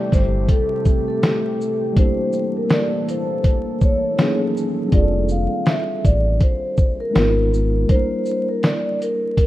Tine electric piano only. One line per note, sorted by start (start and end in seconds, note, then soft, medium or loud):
0.00 1.53 G3 medium
0.00 1.54 A3 medium
0.00 1.58 C4 medium
0.00 1.56 E4 medium
0.00 1.57 A4 medium
1.93 4.13 G3 medium
1.93 4.14 A#3 medium
1.97 4.15 D4 medium
1.97 4.16 E4 medium
2.02 4.17 A4 medium
4.17 4.92 F#3 medium
4.17 4.92 A#3 medium
4.17 4.93 C#4 medium
4.17 4.94 D#4 medium
4.22 4.94 G#4 medium
4.87 7.08 G3 medium
4.87 7.09 C4 medium
4.91 7.10 D4 medium
4.91 7.11 F4 medium
4.96 5.02 G#4 medium
5.02 7.16 A4 medium
7.11 7.87 G#3 medium
7.11 7.21 A#3 soft
7.11 7.88 D#4 medium
7.11 7.89 F4 medium
7.16 7.91 B3 medium
7.16 7.89 A#4 medium
7.86 9.47 G3 medium
7.86 7.96 A3 medium
7.91 9.47 D4 medium
7.91 9.47 E4 medium
7.95 9.47 A#3 medium
7.95 9.47 A#4 medium